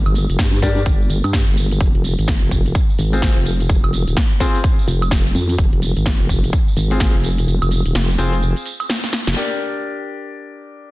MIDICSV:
0, 0, Header, 1, 4, 480
1, 0, Start_track
1, 0, Tempo, 472441
1, 1834, Time_signature, 4, 2, 24, 8
1, 11085, End_track
2, 0, Start_track
2, 0, Title_t, "Grand piano"
2, 0, Program_c, 0, 0
2, 634, Note_on_c, 0, 67, 74
2, 634, Note_on_c, 0, 74, 89
2, 635, Note_on_c, 0, 62, 80
2, 635, Note_on_c, 0, 70, 73
2, 798, Note_off_c, 0, 67, 0
2, 798, Note_off_c, 0, 74, 0
2, 799, Note_off_c, 0, 62, 0
2, 799, Note_off_c, 0, 70, 0
2, 3180, Note_on_c, 0, 72, 77
2, 3181, Note_on_c, 0, 60, 72
2, 3181, Note_on_c, 0, 65, 68
2, 3181, Note_on_c, 0, 68, 67
2, 3405, Note_off_c, 0, 60, 0
2, 3405, Note_off_c, 0, 65, 0
2, 3405, Note_off_c, 0, 68, 0
2, 3405, Note_off_c, 0, 72, 0
2, 4474, Note_on_c, 0, 60, 83
2, 4474, Note_on_c, 0, 65, 77
2, 4474, Note_on_c, 0, 68, 74
2, 4474, Note_on_c, 0, 72, 94
2, 4638, Note_off_c, 0, 60, 0
2, 4638, Note_off_c, 0, 65, 0
2, 4638, Note_off_c, 0, 72, 0
2, 4639, Note_off_c, 0, 68, 0
2, 7021, Note_on_c, 0, 60, 73
2, 7021, Note_on_c, 0, 65, 69
2, 7021, Note_on_c, 0, 68, 66
2, 7021, Note_on_c, 0, 72, 79
2, 7246, Note_off_c, 0, 60, 0
2, 7246, Note_off_c, 0, 65, 0
2, 7246, Note_off_c, 0, 68, 0
2, 7246, Note_off_c, 0, 72, 0
2, 8314, Note_on_c, 0, 60, 79
2, 8314, Note_on_c, 0, 65, 77
2, 8314, Note_on_c, 0, 68, 75
2, 8314, Note_on_c, 0, 72, 89
2, 8478, Note_off_c, 0, 65, 0
2, 8478, Note_off_c, 0, 68, 0
2, 8478, Note_off_c, 0, 72, 0
2, 8479, Note_off_c, 0, 60, 0
2, 9515, Note_on_c, 0, 62, 74
2, 9515, Note_on_c, 0, 67, 68
2, 9515, Note_on_c, 0, 70, 69
2, 9515, Note_on_c, 0, 74, 77
2, 11085, Note_off_c, 0, 62, 0
2, 11085, Note_off_c, 0, 67, 0
2, 11085, Note_off_c, 0, 70, 0
2, 11085, Note_off_c, 0, 74, 0
2, 11085, End_track
3, 0, Start_track
3, 0, Title_t, "Wobble bass"
3, 0, Program_c, 1, 39
3, 60, Note_on_c, 1, 31, 99
3, 277, Note_off_c, 1, 31, 0
3, 300, Note_on_c, 1, 29, 95
3, 379, Note_off_c, 1, 29, 0
3, 394, Note_on_c, 1, 43, 101
3, 859, Note_off_c, 1, 43, 0
3, 874, Note_on_c, 1, 31, 97
3, 1099, Note_off_c, 1, 31, 0
3, 1113, Note_on_c, 1, 31, 96
3, 1237, Note_off_c, 1, 31, 0
3, 1261, Note_on_c, 1, 43, 95
3, 1478, Note_off_c, 1, 43, 0
3, 1501, Note_on_c, 1, 31, 98
3, 1819, Note_off_c, 1, 31, 0
3, 1834, Note_on_c, 1, 29, 97
3, 1958, Note_off_c, 1, 29, 0
3, 1981, Note_on_c, 1, 29, 99
3, 2198, Note_off_c, 1, 29, 0
3, 2221, Note_on_c, 1, 32, 96
3, 2438, Note_off_c, 1, 32, 0
3, 2461, Note_on_c, 1, 29, 99
3, 2779, Note_off_c, 1, 29, 0
3, 3034, Note_on_c, 1, 32, 97
3, 3398, Note_off_c, 1, 32, 0
3, 3421, Note_on_c, 1, 29, 101
3, 3739, Note_off_c, 1, 29, 0
3, 3753, Note_on_c, 1, 29, 101
3, 3877, Note_off_c, 1, 29, 0
3, 3901, Note_on_c, 1, 29, 95
3, 4117, Note_off_c, 1, 29, 0
3, 4141, Note_on_c, 1, 27, 94
3, 4219, Note_off_c, 1, 27, 0
3, 4953, Note_on_c, 1, 29, 97
3, 5419, Note_off_c, 1, 29, 0
3, 5434, Note_on_c, 1, 41, 103
3, 5659, Note_off_c, 1, 41, 0
3, 5674, Note_on_c, 1, 29, 97
3, 5798, Note_off_c, 1, 29, 0
3, 5821, Note_on_c, 1, 29, 100
3, 6038, Note_off_c, 1, 29, 0
3, 6061, Note_on_c, 1, 32, 97
3, 6277, Note_off_c, 1, 32, 0
3, 6301, Note_on_c, 1, 29, 96
3, 6619, Note_off_c, 1, 29, 0
3, 6874, Note_on_c, 1, 32, 100
3, 7238, Note_off_c, 1, 32, 0
3, 7261, Note_on_c, 1, 29, 96
3, 7579, Note_off_c, 1, 29, 0
3, 7594, Note_on_c, 1, 29, 96
3, 7718, Note_off_c, 1, 29, 0
3, 7741, Note_on_c, 1, 29, 96
3, 7958, Note_off_c, 1, 29, 0
3, 7981, Note_on_c, 1, 27, 97
3, 8059, Note_off_c, 1, 27, 0
3, 8073, Note_on_c, 1, 29, 97
3, 8299, Note_off_c, 1, 29, 0
3, 8314, Note_on_c, 1, 29, 103
3, 8678, Note_off_c, 1, 29, 0
3, 9421, Note_on_c, 1, 29, 94
3, 9499, Note_off_c, 1, 29, 0
3, 11085, End_track
4, 0, Start_track
4, 0, Title_t, "Drums"
4, 62, Note_on_c, 9, 42, 50
4, 62, Note_on_c, 9, 76, 66
4, 154, Note_on_c, 9, 46, 107
4, 160, Note_on_c, 9, 54, 70
4, 163, Note_off_c, 9, 42, 0
4, 163, Note_off_c, 9, 76, 0
4, 256, Note_off_c, 9, 46, 0
4, 261, Note_off_c, 9, 54, 0
4, 302, Note_on_c, 9, 42, 62
4, 307, Note_on_c, 9, 54, 33
4, 394, Note_on_c, 9, 36, 119
4, 398, Note_on_c, 9, 38, 118
4, 400, Note_off_c, 9, 54, 0
4, 400, Note_on_c, 9, 54, 43
4, 403, Note_off_c, 9, 42, 0
4, 496, Note_off_c, 9, 36, 0
4, 499, Note_off_c, 9, 38, 0
4, 501, Note_off_c, 9, 54, 0
4, 541, Note_on_c, 9, 42, 34
4, 547, Note_on_c, 9, 54, 29
4, 634, Note_on_c, 9, 36, 60
4, 634, Note_on_c, 9, 46, 109
4, 638, Note_on_c, 9, 38, 36
4, 640, Note_off_c, 9, 54, 0
4, 640, Note_on_c, 9, 54, 77
4, 643, Note_off_c, 9, 42, 0
4, 735, Note_off_c, 9, 36, 0
4, 736, Note_off_c, 9, 46, 0
4, 739, Note_off_c, 9, 38, 0
4, 741, Note_off_c, 9, 54, 0
4, 782, Note_on_c, 9, 42, 63
4, 788, Note_on_c, 9, 54, 32
4, 874, Note_on_c, 9, 36, 126
4, 880, Note_off_c, 9, 54, 0
4, 880, Note_on_c, 9, 54, 43
4, 883, Note_off_c, 9, 42, 0
4, 976, Note_off_c, 9, 36, 0
4, 982, Note_off_c, 9, 54, 0
4, 1027, Note_on_c, 9, 54, 30
4, 1114, Note_on_c, 9, 46, 112
4, 1120, Note_off_c, 9, 54, 0
4, 1120, Note_on_c, 9, 54, 73
4, 1216, Note_off_c, 9, 46, 0
4, 1222, Note_off_c, 9, 54, 0
4, 1262, Note_on_c, 9, 42, 62
4, 1262, Note_on_c, 9, 76, 65
4, 1267, Note_on_c, 9, 54, 31
4, 1354, Note_on_c, 9, 36, 122
4, 1358, Note_on_c, 9, 38, 117
4, 1363, Note_off_c, 9, 42, 0
4, 1363, Note_off_c, 9, 76, 0
4, 1369, Note_off_c, 9, 54, 0
4, 1456, Note_off_c, 9, 36, 0
4, 1460, Note_off_c, 9, 38, 0
4, 1502, Note_on_c, 9, 42, 51
4, 1594, Note_on_c, 9, 46, 108
4, 1600, Note_on_c, 9, 54, 72
4, 1603, Note_off_c, 9, 42, 0
4, 1696, Note_off_c, 9, 46, 0
4, 1702, Note_off_c, 9, 54, 0
4, 1742, Note_on_c, 9, 42, 64
4, 1748, Note_on_c, 9, 54, 31
4, 1834, Note_on_c, 9, 36, 118
4, 1840, Note_off_c, 9, 54, 0
4, 1840, Note_on_c, 9, 54, 46
4, 1844, Note_off_c, 9, 42, 0
4, 1936, Note_off_c, 9, 36, 0
4, 1942, Note_off_c, 9, 54, 0
4, 1982, Note_on_c, 9, 42, 51
4, 2075, Note_on_c, 9, 46, 102
4, 2081, Note_on_c, 9, 54, 73
4, 2084, Note_off_c, 9, 42, 0
4, 2177, Note_off_c, 9, 46, 0
4, 2182, Note_off_c, 9, 54, 0
4, 2222, Note_on_c, 9, 42, 62
4, 2228, Note_on_c, 9, 54, 34
4, 2314, Note_on_c, 9, 36, 115
4, 2318, Note_on_c, 9, 38, 112
4, 2321, Note_off_c, 9, 54, 0
4, 2321, Note_on_c, 9, 54, 46
4, 2324, Note_off_c, 9, 42, 0
4, 2416, Note_off_c, 9, 36, 0
4, 2420, Note_off_c, 9, 38, 0
4, 2422, Note_off_c, 9, 54, 0
4, 2554, Note_on_c, 9, 36, 59
4, 2554, Note_on_c, 9, 46, 109
4, 2560, Note_on_c, 9, 54, 80
4, 2656, Note_off_c, 9, 36, 0
4, 2656, Note_off_c, 9, 46, 0
4, 2662, Note_off_c, 9, 54, 0
4, 2702, Note_on_c, 9, 42, 63
4, 2708, Note_on_c, 9, 54, 34
4, 2794, Note_on_c, 9, 36, 119
4, 2800, Note_off_c, 9, 54, 0
4, 2800, Note_on_c, 9, 54, 45
4, 2803, Note_off_c, 9, 42, 0
4, 2896, Note_off_c, 9, 36, 0
4, 2902, Note_off_c, 9, 54, 0
4, 2948, Note_on_c, 9, 54, 32
4, 3034, Note_on_c, 9, 46, 104
4, 3040, Note_off_c, 9, 54, 0
4, 3040, Note_on_c, 9, 54, 77
4, 3136, Note_off_c, 9, 46, 0
4, 3141, Note_off_c, 9, 54, 0
4, 3182, Note_on_c, 9, 42, 63
4, 3187, Note_on_c, 9, 54, 34
4, 3274, Note_on_c, 9, 36, 122
4, 3278, Note_on_c, 9, 38, 110
4, 3283, Note_off_c, 9, 42, 0
4, 3289, Note_off_c, 9, 54, 0
4, 3376, Note_off_c, 9, 36, 0
4, 3379, Note_off_c, 9, 38, 0
4, 3421, Note_on_c, 9, 42, 51
4, 3514, Note_on_c, 9, 46, 102
4, 3520, Note_on_c, 9, 54, 77
4, 3523, Note_off_c, 9, 42, 0
4, 3615, Note_off_c, 9, 46, 0
4, 3621, Note_off_c, 9, 54, 0
4, 3661, Note_on_c, 9, 42, 64
4, 3667, Note_on_c, 9, 54, 33
4, 3754, Note_on_c, 9, 36, 110
4, 3760, Note_off_c, 9, 54, 0
4, 3760, Note_on_c, 9, 54, 46
4, 3763, Note_off_c, 9, 42, 0
4, 3855, Note_off_c, 9, 36, 0
4, 3861, Note_off_c, 9, 54, 0
4, 3901, Note_on_c, 9, 42, 52
4, 3901, Note_on_c, 9, 76, 72
4, 3994, Note_on_c, 9, 46, 95
4, 4000, Note_on_c, 9, 54, 80
4, 4003, Note_off_c, 9, 42, 0
4, 4003, Note_off_c, 9, 76, 0
4, 4095, Note_off_c, 9, 46, 0
4, 4101, Note_off_c, 9, 54, 0
4, 4141, Note_on_c, 9, 42, 65
4, 4147, Note_on_c, 9, 54, 34
4, 4234, Note_on_c, 9, 36, 117
4, 4238, Note_on_c, 9, 38, 109
4, 4240, Note_off_c, 9, 54, 0
4, 4240, Note_on_c, 9, 54, 47
4, 4243, Note_off_c, 9, 42, 0
4, 4335, Note_off_c, 9, 36, 0
4, 4339, Note_off_c, 9, 38, 0
4, 4341, Note_off_c, 9, 54, 0
4, 4474, Note_on_c, 9, 36, 57
4, 4474, Note_on_c, 9, 46, 100
4, 4478, Note_on_c, 9, 38, 35
4, 4480, Note_on_c, 9, 54, 82
4, 4576, Note_off_c, 9, 36, 0
4, 4576, Note_off_c, 9, 46, 0
4, 4579, Note_off_c, 9, 38, 0
4, 4582, Note_off_c, 9, 54, 0
4, 4621, Note_on_c, 9, 42, 65
4, 4627, Note_on_c, 9, 54, 35
4, 4714, Note_on_c, 9, 36, 117
4, 4720, Note_off_c, 9, 54, 0
4, 4720, Note_on_c, 9, 54, 47
4, 4723, Note_off_c, 9, 42, 0
4, 4815, Note_off_c, 9, 36, 0
4, 4822, Note_off_c, 9, 54, 0
4, 4868, Note_on_c, 9, 54, 33
4, 4955, Note_on_c, 9, 46, 101
4, 4960, Note_off_c, 9, 54, 0
4, 4960, Note_on_c, 9, 54, 82
4, 5056, Note_off_c, 9, 46, 0
4, 5062, Note_off_c, 9, 54, 0
4, 5102, Note_on_c, 9, 42, 65
4, 5102, Note_on_c, 9, 76, 68
4, 5108, Note_on_c, 9, 54, 35
4, 5194, Note_on_c, 9, 36, 117
4, 5198, Note_on_c, 9, 38, 109
4, 5200, Note_off_c, 9, 54, 0
4, 5200, Note_on_c, 9, 54, 48
4, 5204, Note_off_c, 9, 42, 0
4, 5204, Note_off_c, 9, 76, 0
4, 5295, Note_off_c, 9, 36, 0
4, 5300, Note_off_c, 9, 38, 0
4, 5302, Note_off_c, 9, 54, 0
4, 5342, Note_on_c, 9, 42, 52
4, 5435, Note_on_c, 9, 46, 100
4, 5440, Note_on_c, 9, 54, 81
4, 5443, Note_off_c, 9, 42, 0
4, 5536, Note_off_c, 9, 46, 0
4, 5542, Note_off_c, 9, 54, 0
4, 5582, Note_on_c, 9, 42, 63
4, 5588, Note_on_c, 9, 54, 35
4, 5674, Note_on_c, 9, 36, 114
4, 5680, Note_off_c, 9, 54, 0
4, 5680, Note_on_c, 9, 54, 47
4, 5684, Note_off_c, 9, 42, 0
4, 5776, Note_off_c, 9, 36, 0
4, 5782, Note_off_c, 9, 54, 0
4, 5822, Note_on_c, 9, 42, 55
4, 5914, Note_on_c, 9, 46, 92
4, 5920, Note_on_c, 9, 54, 81
4, 5923, Note_off_c, 9, 42, 0
4, 6016, Note_off_c, 9, 46, 0
4, 6022, Note_off_c, 9, 54, 0
4, 6062, Note_on_c, 9, 42, 67
4, 6067, Note_on_c, 9, 54, 34
4, 6154, Note_on_c, 9, 36, 113
4, 6158, Note_on_c, 9, 38, 114
4, 6160, Note_off_c, 9, 54, 0
4, 6160, Note_on_c, 9, 54, 47
4, 6163, Note_off_c, 9, 42, 0
4, 6256, Note_off_c, 9, 36, 0
4, 6260, Note_off_c, 9, 38, 0
4, 6262, Note_off_c, 9, 54, 0
4, 6394, Note_on_c, 9, 36, 56
4, 6395, Note_on_c, 9, 46, 100
4, 6400, Note_on_c, 9, 54, 82
4, 6496, Note_off_c, 9, 36, 0
4, 6496, Note_off_c, 9, 46, 0
4, 6502, Note_off_c, 9, 54, 0
4, 6542, Note_on_c, 9, 42, 69
4, 6548, Note_on_c, 9, 54, 35
4, 6634, Note_on_c, 9, 36, 116
4, 6640, Note_off_c, 9, 54, 0
4, 6640, Note_on_c, 9, 54, 48
4, 6644, Note_off_c, 9, 42, 0
4, 6736, Note_off_c, 9, 36, 0
4, 6742, Note_off_c, 9, 54, 0
4, 6788, Note_on_c, 9, 54, 35
4, 6874, Note_on_c, 9, 46, 98
4, 6880, Note_off_c, 9, 54, 0
4, 6880, Note_on_c, 9, 54, 82
4, 6976, Note_off_c, 9, 46, 0
4, 6982, Note_off_c, 9, 54, 0
4, 7021, Note_on_c, 9, 42, 67
4, 7027, Note_on_c, 9, 54, 36
4, 7114, Note_on_c, 9, 36, 113
4, 7118, Note_on_c, 9, 38, 117
4, 7120, Note_off_c, 9, 54, 0
4, 7120, Note_on_c, 9, 54, 47
4, 7123, Note_off_c, 9, 42, 0
4, 7216, Note_off_c, 9, 36, 0
4, 7219, Note_off_c, 9, 38, 0
4, 7222, Note_off_c, 9, 54, 0
4, 7262, Note_on_c, 9, 42, 54
4, 7354, Note_on_c, 9, 46, 100
4, 7360, Note_on_c, 9, 54, 82
4, 7363, Note_off_c, 9, 42, 0
4, 7456, Note_off_c, 9, 46, 0
4, 7461, Note_off_c, 9, 54, 0
4, 7502, Note_on_c, 9, 42, 66
4, 7508, Note_on_c, 9, 54, 34
4, 7600, Note_off_c, 9, 54, 0
4, 7600, Note_on_c, 9, 54, 46
4, 7604, Note_off_c, 9, 42, 0
4, 7702, Note_off_c, 9, 54, 0
4, 7742, Note_on_c, 9, 42, 57
4, 7742, Note_on_c, 9, 76, 67
4, 7748, Note_on_c, 9, 54, 33
4, 7835, Note_on_c, 9, 46, 98
4, 7840, Note_off_c, 9, 54, 0
4, 7840, Note_on_c, 9, 54, 80
4, 7843, Note_off_c, 9, 42, 0
4, 7843, Note_off_c, 9, 76, 0
4, 7936, Note_off_c, 9, 46, 0
4, 7942, Note_off_c, 9, 54, 0
4, 7982, Note_on_c, 9, 42, 68
4, 7988, Note_on_c, 9, 54, 33
4, 8078, Note_on_c, 9, 38, 123
4, 8080, Note_off_c, 9, 54, 0
4, 8080, Note_on_c, 9, 54, 46
4, 8083, Note_off_c, 9, 42, 0
4, 8179, Note_off_c, 9, 38, 0
4, 8182, Note_off_c, 9, 54, 0
4, 8227, Note_on_c, 9, 54, 33
4, 8315, Note_on_c, 9, 46, 101
4, 8318, Note_on_c, 9, 38, 37
4, 8320, Note_off_c, 9, 54, 0
4, 8320, Note_on_c, 9, 54, 78
4, 8416, Note_off_c, 9, 46, 0
4, 8420, Note_off_c, 9, 38, 0
4, 8422, Note_off_c, 9, 54, 0
4, 8462, Note_on_c, 9, 42, 69
4, 8467, Note_on_c, 9, 54, 35
4, 8560, Note_off_c, 9, 54, 0
4, 8560, Note_on_c, 9, 54, 47
4, 8563, Note_off_c, 9, 42, 0
4, 8662, Note_off_c, 9, 54, 0
4, 8702, Note_on_c, 9, 42, 42
4, 8707, Note_on_c, 9, 54, 33
4, 8794, Note_on_c, 9, 46, 103
4, 8800, Note_off_c, 9, 54, 0
4, 8800, Note_on_c, 9, 54, 81
4, 8803, Note_off_c, 9, 42, 0
4, 8896, Note_off_c, 9, 46, 0
4, 8902, Note_off_c, 9, 54, 0
4, 8941, Note_on_c, 9, 42, 72
4, 8941, Note_on_c, 9, 76, 63
4, 8947, Note_on_c, 9, 54, 34
4, 9038, Note_on_c, 9, 38, 124
4, 9040, Note_off_c, 9, 54, 0
4, 9040, Note_on_c, 9, 54, 48
4, 9043, Note_off_c, 9, 42, 0
4, 9043, Note_off_c, 9, 76, 0
4, 9140, Note_off_c, 9, 38, 0
4, 9142, Note_off_c, 9, 54, 0
4, 9182, Note_on_c, 9, 38, 53
4, 9182, Note_on_c, 9, 42, 55
4, 9187, Note_on_c, 9, 54, 34
4, 9274, Note_off_c, 9, 38, 0
4, 9274, Note_on_c, 9, 38, 79
4, 9274, Note_on_c, 9, 46, 104
4, 9280, Note_off_c, 9, 54, 0
4, 9280, Note_on_c, 9, 54, 81
4, 9283, Note_off_c, 9, 42, 0
4, 9376, Note_off_c, 9, 38, 0
4, 9376, Note_off_c, 9, 46, 0
4, 9382, Note_off_c, 9, 54, 0
4, 9422, Note_on_c, 9, 38, 78
4, 9422, Note_on_c, 9, 42, 66
4, 9428, Note_on_c, 9, 54, 34
4, 9523, Note_off_c, 9, 38, 0
4, 9523, Note_off_c, 9, 42, 0
4, 9529, Note_off_c, 9, 54, 0
4, 11085, End_track
0, 0, End_of_file